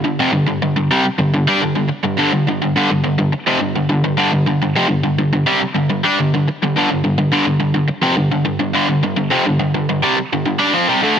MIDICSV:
0, 0, Header, 1, 3, 480
1, 0, Start_track
1, 0, Tempo, 570342
1, 400, Time_signature, 4, 2, 24, 8
1, 9421, End_track
2, 0, Start_track
2, 0, Title_t, "Overdriven electric guitar"
2, 0, Program_c, 0, 29
2, 33, Note_on_c, 0, 43, 62
2, 39, Note_on_c, 0, 50, 68
2, 157, Note_off_c, 0, 43, 0
2, 159, Note_off_c, 0, 50, 0
2, 161, Note_on_c, 0, 41, 83
2, 167, Note_on_c, 0, 48, 93
2, 265, Note_off_c, 0, 41, 0
2, 269, Note_on_c, 0, 43, 63
2, 273, Note_off_c, 0, 48, 0
2, 276, Note_on_c, 0, 50, 78
2, 383, Note_off_c, 0, 43, 0
2, 392, Note_off_c, 0, 50, 0
2, 393, Note_on_c, 0, 43, 69
2, 402, Note_on_c, 0, 50, 71
2, 513, Note_off_c, 0, 43, 0
2, 515, Note_off_c, 0, 50, 0
2, 523, Note_on_c, 0, 43, 66
2, 525, Note_on_c, 0, 50, 72
2, 631, Note_off_c, 0, 43, 0
2, 635, Note_off_c, 0, 50, 0
2, 642, Note_on_c, 0, 43, 62
2, 645, Note_on_c, 0, 50, 69
2, 760, Note_off_c, 0, 43, 0
2, 761, Note_off_c, 0, 50, 0
2, 764, Note_on_c, 0, 48, 82
2, 769, Note_on_c, 0, 55, 79
2, 874, Note_off_c, 0, 48, 0
2, 877, Note_off_c, 0, 55, 0
2, 996, Note_on_c, 0, 43, 65
2, 1004, Note_on_c, 0, 50, 71
2, 1114, Note_off_c, 0, 43, 0
2, 1121, Note_off_c, 0, 50, 0
2, 1124, Note_on_c, 0, 43, 62
2, 1130, Note_on_c, 0, 50, 68
2, 1241, Note_off_c, 0, 43, 0
2, 1242, Note_on_c, 0, 55, 86
2, 1244, Note_off_c, 0, 50, 0
2, 1248, Note_on_c, 0, 62, 87
2, 1353, Note_off_c, 0, 55, 0
2, 1356, Note_off_c, 0, 62, 0
2, 1356, Note_on_c, 0, 43, 66
2, 1362, Note_on_c, 0, 50, 78
2, 1469, Note_off_c, 0, 43, 0
2, 1469, Note_off_c, 0, 50, 0
2, 1479, Note_on_c, 0, 43, 65
2, 1479, Note_on_c, 0, 50, 68
2, 1582, Note_off_c, 0, 43, 0
2, 1599, Note_off_c, 0, 50, 0
2, 1718, Note_on_c, 0, 43, 62
2, 1722, Note_on_c, 0, 50, 65
2, 1823, Note_off_c, 0, 43, 0
2, 1832, Note_off_c, 0, 50, 0
2, 1833, Note_on_c, 0, 43, 89
2, 1842, Note_on_c, 0, 50, 96
2, 1948, Note_off_c, 0, 43, 0
2, 1952, Note_off_c, 0, 50, 0
2, 1960, Note_on_c, 0, 43, 68
2, 1962, Note_on_c, 0, 50, 72
2, 2073, Note_off_c, 0, 43, 0
2, 2080, Note_off_c, 0, 50, 0
2, 2083, Note_on_c, 0, 43, 56
2, 2094, Note_on_c, 0, 50, 75
2, 2194, Note_off_c, 0, 50, 0
2, 2197, Note_off_c, 0, 43, 0
2, 2205, Note_on_c, 0, 50, 76
2, 2207, Note_on_c, 0, 43, 67
2, 2312, Note_off_c, 0, 43, 0
2, 2321, Note_off_c, 0, 50, 0
2, 2323, Note_on_c, 0, 43, 88
2, 2332, Note_on_c, 0, 50, 95
2, 2432, Note_off_c, 0, 43, 0
2, 2437, Note_off_c, 0, 50, 0
2, 2444, Note_on_c, 0, 43, 65
2, 2452, Note_on_c, 0, 50, 65
2, 2545, Note_off_c, 0, 43, 0
2, 2551, Note_off_c, 0, 50, 0
2, 2555, Note_on_c, 0, 43, 62
2, 2561, Note_on_c, 0, 50, 75
2, 2667, Note_off_c, 0, 43, 0
2, 2671, Note_off_c, 0, 50, 0
2, 2677, Note_on_c, 0, 43, 65
2, 2682, Note_on_c, 0, 50, 65
2, 2793, Note_off_c, 0, 43, 0
2, 2799, Note_off_c, 0, 50, 0
2, 2919, Note_on_c, 0, 41, 86
2, 2925, Note_on_c, 0, 48, 87
2, 3029, Note_off_c, 0, 41, 0
2, 3033, Note_off_c, 0, 48, 0
2, 3033, Note_on_c, 0, 43, 65
2, 3039, Note_on_c, 0, 50, 69
2, 3150, Note_off_c, 0, 43, 0
2, 3153, Note_off_c, 0, 50, 0
2, 3160, Note_on_c, 0, 43, 54
2, 3163, Note_on_c, 0, 50, 57
2, 3266, Note_off_c, 0, 43, 0
2, 3266, Note_off_c, 0, 50, 0
2, 3276, Note_on_c, 0, 43, 67
2, 3276, Note_on_c, 0, 50, 79
2, 3390, Note_off_c, 0, 50, 0
2, 3391, Note_off_c, 0, 43, 0
2, 3400, Note_on_c, 0, 50, 73
2, 3401, Note_on_c, 0, 43, 61
2, 3500, Note_off_c, 0, 43, 0
2, 3510, Note_off_c, 0, 50, 0
2, 3510, Note_on_c, 0, 43, 86
2, 3520, Note_on_c, 0, 50, 90
2, 3625, Note_off_c, 0, 43, 0
2, 3631, Note_off_c, 0, 50, 0
2, 3638, Note_on_c, 0, 43, 58
2, 3642, Note_on_c, 0, 50, 75
2, 3746, Note_off_c, 0, 43, 0
2, 3755, Note_off_c, 0, 50, 0
2, 3757, Note_on_c, 0, 43, 67
2, 3765, Note_on_c, 0, 50, 76
2, 3876, Note_off_c, 0, 43, 0
2, 3880, Note_off_c, 0, 50, 0
2, 3886, Note_on_c, 0, 43, 65
2, 3894, Note_on_c, 0, 50, 67
2, 3999, Note_off_c, 0, 43, 0
2, 4002, Note_on_c, 0, 41, 86
2, 4004, Note_off_c, 0, 50, 0
2, 4010, Note_on_c, 0, 48, 95
2, 4106, Note_off_c, 0, 41, 0
2, 4109, Note_on_c, 0, 43, 67
2, 4111, Note_off_c, 0, 48, 0
2, 4114, Note_on_c, 0, 50, 63
2, 4227, Note_off_c, 0, 50, 0
2, 4229, Note_off_c, 0, 43, 0
2, 4237, Note_on_c, 0, 50, 65
2, 4239, Note_on_c, 0, 43, 67
2, 4352, Note_off_c, 0, 43, 0
2, 4356, Note_off_c, 0, 50, 0
2, 4362, Note_on_c, 0, 43, 61
2, 4365, Note_on_c, 0, 50, 71
2, 4473, Note_off_c, 0, 43, 0
2, 4480, Note_off_c, 0, 50, 0
2, 4483, Note_on_c, 0, 43, 61
2, 4489, Note_on_c, 0, 50, 73
2, 4595, Note_off_c, 0, 50, 0
2, 4598, Note_on_c, 0, 48, 82
2, 4599, Note_off_c, 0, 43, 0
2, 4605, Note_on_c, 0, 55, 95
2, 4709, Note_off_c, 0, 48, 0
2, 4712, Note_off_c, 0, 55, 0
2, 4835, Note_on_c, 0, 43, 58
2, 4844, Note_on_c, 0, 50, 70
2, 4951, Note_off_c, 0, 43, 0
2, 4952, Note_off_c, 0, 50, 0
2, 4961, Note_on_c, 0, 43, 62
2, 4963, Note_on_c, 0, 50, 64
2, 5078, Note_off_c, 0, 43, 0
2, 5079, Note_off_c, 0, 50, 0
2, 5079, Note_on_c, 0, 55, 76
2, 5090, Note_on_c, 0, 62, 82
2, 5190, Note_off_c, 0, 55, 0
2, 5195, Note_off_c, 0, 62, 0
2, 5203, Note_on_c, 0, 43, 68
2, 5207, Note_on_c, 0, 50, 79
2, 5319, Note_off_c, 0, 43, 0
2, 5321, Note_off_c, 0, 50, 0
2, 5334, Note_on_c, 0, 43, 68
2, 5336, Note_on_c, 0, 50, 65
2, 5444, Note_off_c, 0, 43, 0
2, 5445, Note_off_c, 0, 50, 0
2, 5575, Note_on_c, 0, 43, 60
2, 5583, Note_on_c, 0, 50, 80
2, 5680, Note_off_c, 0, 43, 0
2, 5689, Note_off_c, 0, 50, 0
2, 5690, Note_on_c, 0, 43, 85
2, 5700, Note_on_c, 0, 50, 108
2, 5795, Note_off_c, 0, 43, 0
2, 5800, Note_off_c, 0, 50, 0
2, 5810, Note_on_c, 0, 43, 69
2, 5813, Note_on_c, 0, 50, 72
2, 5915, Note_off_c, 0, 43, 0
2, 5915, Note_off_c, 0, 50, 0
2, 5925, Note_on_c, 0, 43, 60
2, 5925, Note_on_c, 0, 50, 56
2, 6032, Note_off_c, 0, 43, 0
2, 6034, Note_off_c, 0, 50, 0
2, 6042, Note_on_c, 0, 43, 62
2, 6044, Note_on_c, 0, 50, 70
2, 6148, Note_off_c, 0, 43, 0
2, 6156, Note_off_c, 0, 50, 0
2, 6158, Note_on_c, 0, 43, 88
2, 6167, Note_on_c, 0, 50, 109
2, 6270, Note_off_c, 0, 43, 0
2, 6274, Note_off_c, 0, 50, 0
2, 6287, Note_on_c, 0, 43, 67
2, 6288, Note_on_c, 0, 50, 72
2, 6384, Note_off_c, 0, 43, 0
2, 6388, Note_off_c, 0, 50, 0
2, 6394, Note_on_c, 0, 43, 64
2, 6398, Note_on_c, 0, 50, 74
2, 6505, Note_off_c, 0, 43, 0
2, 6508, Note_off_c, 0, 50, 0
2, 6516, Note_on_c, 0, 43, 60
2, 6518, Note_on_c, 0, 50, 73
2, 6624, Note_off_c, 0, 43, 0
2, 6637, Note_off_c, 0, 50, 0
2, 6748, Note_on_c, 0, 41, 80
2, 6758, Note_on_c, 0, 48, 102
2, 6865, Note_off_c, 0, 41, 0
2, 6870, Note_off_c, 0, 48, 0
2, 6873, Note_on_c, 0, 43, 61
2, 6876, Note_on_c, 0, 50, 77
2, 6988, Note_off_c, 0, 43, 0
2, 6988, Note_off_c, 0, 50, 0
2, 6998, Note_on_c, 0, 43, 51
2, 6998, Note_on_c, 0, 50, 70
2, 7101, Note_off_c, 0, 43, 0
2, 7106, Note_off_c, 0, 50, 0
2, 7111, Note_on_c, 0, 43, 69
2, 7116, Note_on_c, 0, 50, 63
2, 7224, Note_off_c, 0, 43, 0
2, 7227, Note_off_c, 0, 50, 0
2, 7234, Note_on_c, 0, 43, 65
2, 7237, Note_on_c, 0, 50, 71
2, 7343, Note_off_c, 0, 43, 0
2, 7353, Note_on_c, 0, 43, 88
2, 7357, Note_off_c, 0, 50, 0
2, 7368, Note_on_c, 0, 50, 95
2, 7468, Note_off_c, 0, 43, 0
2, 7472, Note_off_c, 0, 50, 0
2, 7478, Note_on_c, 0, 43, 64
2, 7482, Note_on_c, 0, 50, 77
2, 7588, Note_off_c, 0, 43, 0
2, 7592, Note_off_c, 0, 50, 0
2, 7598, Note_on_c, 0, 43, 68
2, 7603, Note_on_c, 0, 50, 72
2, 7701, Note_off_c, 0, 43, 0
2, 7704, Note_off_c, 0, 50, 0
2, 7711, Note_on_c, 0, 43, 68
2, 7714, Note_on_c, 0, 50, 69
2, 7825, Note_off_c, 0, 43, 0
2, 7828, Note_on_c, 0, 41, 91
2, 7833, Note_off_c, 0, 50, 0
2, 7836, Note_on_c, 0, 48, 97
2, 7946, Note_off_c, 0, 41, 0
2, 7951, Note_off_c, 0, 48, 0
2, 7963, Note_on_c, 0, 43, 66
2, 7970, Note_on_c, 0, 50, 75
2, 8066, Note_off_c, 0, 50, 0
2, 8067, Note_off_c, 0, 43, 0
2, 8076, Note_on_c, 0, 50, 73
2, 8077, Note_on_c, 0, 43, 66
2, 8191, Note_off_c, 0, 43, 0
2, 8193, Note_off_c, 0, 50, 0
2, 8201, Note_on_c, 0, 43, 60
2, 8203, Note_on_c, 0, 50, 73
2, 8315, Note_off_c, 0, 43, 0
2, 8316, Note_off_c, 0, 50, 0
2, 8325, Note_on_c, 0, 43, 63
2, 8327, Note_on_c, 0, 50, 78
2, 8435, Note_off_c, 0, 50, 0
2, 8438, Note_on_c, 0, 48, 92
2, 8443, Note_off_c, 0, 43, 0
2, 8447, Note_on_c, 0, 55, 97
2, 8552, Note_off_c, 0, 48, 0
2, 8557, Note_off_c, 0, 55, 0
2, 8693, Note_on_c, 0, 43, 59
2, 8697, Note_on_c, 0, 50, 72
2, 8791, Note_off_c, 0, 43, 0
2, 8793, Note_off_c, 0, 50, 0
2, 8801, Note_on_c, 0, 43, 67
2, 8803, Note_on_c, 0, 50, 77
2, 8913, Note_on_c, 0, 55, 72
2, 8918, Note_on_c, 0, 62, 98
2, 8922, Note_off_c, 0, 43, 0
2, 8923, Note_off_c, 0, 50, 0
2, 9031, Note_off_c, 0, 55, 0
2, 9033, Note_off_c, 0, 62, 0
2, 9035, Note_on_c, 0, 53, 94
2, 9041, Note_on_c, 0, 60, 111
2, 9152, Note_off_c, 0, 53, 0
2, 9155, Note_off_c, 0, 60, 0
2, 9161, Note_on_c, 0, 48, 92
2, 9166, Note_on_c, 0, 55, 93
2, 9272, Note_off_c, 0, 48, 0
2, 9275, Note_on_c, 0, 50, 73
2, 9278, Note_off_c, 0, 55, 0
2, 9285, Note_on_c, 0, 57, 90
2, 9393, Note_off_c, 0, 50, 0
2, 9397, Note_off_c, 0, 57, 0
2, 9421, End_track
3, 0, Start_track
3, 0, Title_t, "Muted overdriven electric guitar strokes"
3, 882, Note_on_c, 9, 29, 55
3, 966, Note_off_c, 9, 29, 0
3, 1592, Note_on_c, 9, 29, 55
3, 1676, Note_off_c, 9, 29, 0
3, 2803, Note_on_c, 9, 29, 61
3, 2887, Note_off_c, 9, 29, 0
3, 4718, Note_on_c, 9, 29, 66
3, 4802, Note_off_c, 9, 29, 0
3, 5455, Note_on_c, 9, 29, 54
3, 5539, Note_off_c, 9, 29, 0
3, 6634, Note_on_c, 9, 29, 68
3, 6718, Note_off_c, 9, 29, 0
3, 8555, Note_on_c, 9, 29, 61
3, 8640, Note_off_c, 9, 29, 0
3, 9421, End_track
0, 0, End_of_file